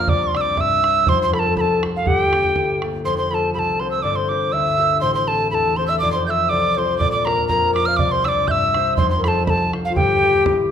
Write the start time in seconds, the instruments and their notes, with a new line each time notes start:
Already playing: harp A#1 F2 A#3 C4 D4 F4, tin whistle F6
0.07 harp C2 C3, flute D5, tin whistle D6, bodhran
0.24 tin whistle C6
0.34 harp C4 D4 G4, flute D5, tin whistle E6, bodhran
0.41 tin whistle D6
0.46 bodhran
0.57 harp G2, flute E5, tin whistle E6, bodhran
0.83 harp C4 D4 G4, bodhran
1.06 harp F1 F2, flute C5, tin whistle C6, bodhran
1.22 tin whistle C6
1.33 harp C4 F4 A4, flute A4, tin whistle B5, bodhran
1.39 flute A#4, tin whistle A5
1.45 flute A4, bodhran
1.56 harp C2, flute A4, tin whistle B5, bodhran
1.61 tin whistle A5
1.83 harp C4 F4 A4, bodhran
1.96 tin whistle F5
2.05 harp G1 G2, flute G4, tin whistle F#5, bodhran
2.21 tin whistle G5
2.32 harp A#3 G4 A4, bodhran
2.44 bodhran
2.55 harp D2, bodhran
2.82 harp A#3 G4 A4, bodhran
3.04 harp F1 F2, flute C5, tin whistle C6
3.18 flute C5, tin whistle C6
3.31 harp C4 F4 A4, flute A4, tin whistle A5 B5
3.54 harp C2, flute A4, tin whistle B5
3.59 tin whistle A5
3.80 harp C4 F4 A4, flute C5, tin whistle C6
3.91 tin whistle E6
4.02 harp G1 G2, flute D5, tin whistle D6
4.16 flute C5, tin whistle C6
4.29 harp D4 G4 A#4, tin whistle D6
4.52 harp D2, flute E5, tin whistle E6
4.78 harp D4 G4 A#4
5.01 harp A1 A2, flute C5, tin whistle C6
5.15 flute C5, tin whistle C6
5.28 harp C4 E4 A4, flute A4, tin whistle A5
5.51 harp E2, flute A4, tin whistle A5 B5
5.77 harp C4 E4 A4, flute C5, tin whistle C6
5.87 flute E5, tin whistle E6
5.99 harp F1 F2, flute D5, tin whistle D6
6.12 flute C5, tin whistle C6
6.26 harp C4 F4 A4, flute E5, tin whistle G6
6.30 tin whistle E6
6.49 harp C2, flute D5, tin whistle D6
6.75 harp C4 F4 A4, flute C5, tin whistle C6 D6
6.98 harp A#1 A#2, flute D5, tin whistle D6, bodhran
7.12 flute D5, tin whistle D6
7.25 harp D4 F4 A#4, flute A#4, tin whistle A#5, bodhran
7.38 bodhran
7.48 harp F2, flute A#4, tin whistle A#5, bodhran
7.74 harp D4 F4 A#4, tin whistle D6, bodhran
7.86 flute F5, tin whistle F6
7.97 harp C2 C3, flute D5, tin whistle D6, bodhran
8.11 flute C5, tin whistle C6
8.25 harp D4 G4 C5, flute D5, tin whistle D6 E6, bodhran
8.37 bodhran
8.48 harp G2, flute E5, tin whistle E6 G6, bodhran
8.74 harp D4 G4 C5, bodhran
8.97 harp F1 F2, flute C5, tin whistle C6, bodhran
9.10 tin whistle C6
9.18 flute A#4
9.24 harp F4 A4 C5, flute A4, tin whistle A5 B5, bodhran
9.36 bodhran
9.46 harp C2, flute A4, tin whistle A5 B5, bodhran
9.73 harp F4 A4 C5, bodhran
9.85 tin whistle F5
9.90 flute F4
9.96 harp G1 G2, flute G4, tin whistle G5, bodhran
10.22 harp G4 A4 A#4
10.34 bodhran
10.46 harp A1 A2, bodhran